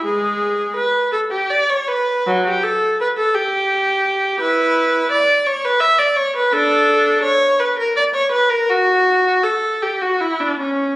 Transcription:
\new Staff \with { instrumentName = "Viola" } { \time 6/8 \key b \minor \tempo 4. = 55 <gis gis'>4 b'8 a'16 g'16 d''16 cis''16 b'8 | fis16 g'16 a'8 b'16 a'16 g'4. | <e' b'>4 d''8 cis''16 b'16 e''16 d''16 cis''16 b'16 | <d' a'>4 cis''8 b'16 ais'16 d''16 cis''16 b'16 ais'16 |
fis'4 a'8 g'16 fis'16 e'16 d'16 cis'8 | }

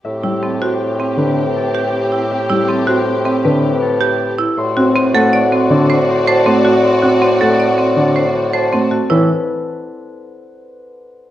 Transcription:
<<
  \new Staff \with { instrumentName = "Harp" } { \time 6/4 \key a \dorian \tempo 4 = 159 << { e''4 a'8 c''4 e''8 b'4 a'2 | e''4 a'8 c''4 e''8 b'4 a'2 | c'''4 c''8 fis''4 c'''8 d''4 c''8 a''4 a'8 | c'''4 c''8 fis''4 c'''8 d''4 c''8 a''4 a'8~ |
a'1. | } \\ { r1. | r1. | r1. | r1. |
b'8 r1 r4. | } >> }
  \new Staff \with { instrumentName = "Soprano saxophone" } { \time 6/4 \key a \dorian g'1.~ | g'1~ g'4. r8 | fis'1.~ | fis'1~ fis'4. r8 |
r1. | }
  \new Staff \with { instrumentName = "String section" } { \time 6/4 \key a \dorian <c' g'>1.~ | <c' g'>1~ <c' g'>4. r8 | <fis' d''>1.~ | <fis' d''>1~ <fis' d''>4. r8 |
r1. | }
  \new Staff \with { instrumentName = "Marimba" } { \time 6/4 \key a \dorian r8 e'8 c'8 fis'8 r8 c'8 r4. g'8 r8 e'8 | r8 e'8 c'8 fis'8 r8 c'8 r4. g'8 r8 e'8 | r8 fis'8 c'8 a'8 d''8 c'8 r8 c''8 r8 c''8 c'8 fis'8 | r8 fis'8 c'8 a'8 d''8 c'8 r8 c''8 r8 c''8 c'8 fis'8 |
e'8 r1 r4. | }
  \new Staff \with { instrumentName = "Grand piano" } { \clef bass \time 6/4 \key a \dorian r8 g8 r2 d8 r2 r8 | r8 g8 r2 d8 r2 r8 | r8 c'8 r8 a8 r4 d8 r4. a8 r8 | r8 c'8 r8 a8 r4 d8 r4. a8 r8 |
e8 r1 r4. | }
  \new Staff \with { instrumentName = "Bassoon" } { \clef bass \time 6/4 \key a \dorian a,1.~ | a,1. | a,1.~ | a,1. |
a,8 r1 r4. | }
>>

